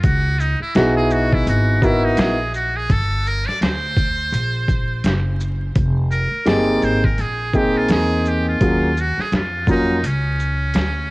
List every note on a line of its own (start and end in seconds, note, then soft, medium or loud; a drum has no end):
0.03 0.57 C#2 loud
0.03 0.41 F#4 loud
0.03 kick loud
0.03 closed hi-hat medium
0.40 0.61 D#4 medium
0.40 shaker medium
0.60 0.75 E4 medium
0.60 muted upright bass stroke soft
0.75 1.43 B1 medium
0.75 1.77 B3 medium
0.75 1.77 D#4 medium
0.75 1.77 E4 medium
0.75 1.77 F#4 medium
0.75 0.95 F#4 medium
0.75 1.77 G#4 medium
0.75 snare loud
0.75 closed hi-hat medium
0.97 1.14 G#4 medium
1.10 1.36 F#4 medium
1.10 shaker medium
1.32 1.48 E4 medium
1.32 kick medium
1.47 2.14 G#1 loud
1.47 1.86 F#4 medium
1.47 closed hi-hat loud
1.81 2.34 B3 medium
1.81 2.35 D#4 medium
1.81 2.35 E4 medium
1.81 2.06 E4 medium
1.81 2.35 F#4 medium
1.81 2.35 A#4 medium
1.81 kick medium
1.81 shaker medium
2.05 2.21 D#4 medium
2.17 2.86 A#1 loud
2.17 2.55 G#4 loud
2.17 snare loud
2.17 closed hi-hat medium
2.54 2.78 F#4 medium
2.54 shaker medium
2.77 2.93 G#4 medium
2.90 3.43 G1 loud
2.90 3.29 A4 loud
2.90 kick loud
2.90 closed hi-hat medium
3.26 3.49 A#4 loud
3.26 shaker medium
3.46 3.62 D5 loud
3.46 muted upright bass stroke soft
3.46 snare soft
3.61 4.29 D2 medium
3.61 5.36 C5 loud
3.61 snare loud
3.61 closed hi-hat medium
3.96 kick medium
3.96 closed hi-hat medium
3.96 shaker soft
4.32 5.00 A#1 loud
4.32 closed hi-hat loud
4.68 kick medium
4.68 closed hi-hat soft
4.68 shaker soft
5.04 5.72 F#1 medium
5.04 snare loud
5.04 closed hi-hat medium
5.40 shaker medium
5.76 6.29 F1 loud
5.76 kick loud
5.76 closed hi-hat medium
6.12 6.45 A#4 medium
6.12 shaker medium
6.32 muted upright bass stroke soft
6.46 6.80 G1 medium
6.46 6.99 A#3 medium
6.46 6.99 C4 medium
6.46 6.99 D#4 medium
6.46 6.99 G4 medium
6.46 6.99 G#4 medium
6.46 6.86 D5 loud
6.46 snare loud
6.46 closed hi-hat medium
6.82 7.16 G#1 medium
6.82 7.06 C5 loud
6.82 shaker soft
7.04 7.22 A#4 medium
7.04 kick medium
7.18 7.86 A#1 medium
7.18 7.58 G#4 loud
7.18 closed hi-hat loud
7.53 8.55 A#3 medium
7.53 8.55 C4 medium
7.53 8.55 D#4 medium
7.53 7.79 G4 medium
7.53 8.56 G#4 medium
7.53 8.55 G5 medium
7.53 kick medium
7.53 shaker soft
7.77 7.91 F4 medium
7.88 8.57 E2 loud
7.88 8.30 G#4 loud
7.88 snare loud
7.88 closed hi-hat medium
8.25 8.48 G4 medium
8.25 shaker soft
8.49 9.02 F4 medium
8.60 9.15 D#2 medium
8.60 8.88 F#3 medium
8.60 8.88 A#3 medium
8.60 8.88 C#4 medium
8.60 8.88 F4 medium
8.60 8.88 G#4 medium
8.60 kick loud
8.60 closed hi-hat medium
8.97 9.22 F#4 medium
8.97 shaker medium
9.17 9.34 G#4 medium
9.17 muted upright bass stroke soft
9.17 snare soft
9.32 10.00 F2 medium
9.32 9.68 F4 medium
9.32 snare loud
9.32 closed hi-hat medium
9.67 9.94 F#3 medium
9.67 9.95 A#3 medium
9.67 9.95 C#4 medium
9.67 10.08 D#4 medium
9.67 9.95 F4 medium
9.67 9.95 A#4 medium
9.67 kick medium
9.67 shaker soft
10.03 10.71 C#2 medium
10.03 11.10 C#4 medium
10.03 closed hi-hat loud
10.39 shaker soft
10.74 11.10 D2 medium
10.74 snare loud
10.74 closed hi-hat medium